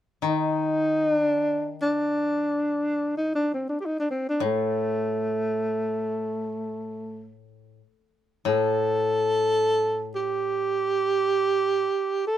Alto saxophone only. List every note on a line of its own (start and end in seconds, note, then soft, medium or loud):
0.28 1.13 D#4 medium
1.13 1.76 D4 medium
1.82 3.13 D4 medium
3.17 3.35 D#4 medium
3.35 3.51 D4 medium
3.54 3.68 C4 medium
3.69 3.78 D4 soft
3.81 3.87 G4 soft
3.86 3.97 D#4 soft
4.00 4.10 D4 soft
4.11 4.25 C4 soft
4.29 4.43 D4 medium
4.45 7.33 A3 medium
8.48 10.09 A4 medium
10.15 12.23 G4 medium
12.27 12.38 A4 medium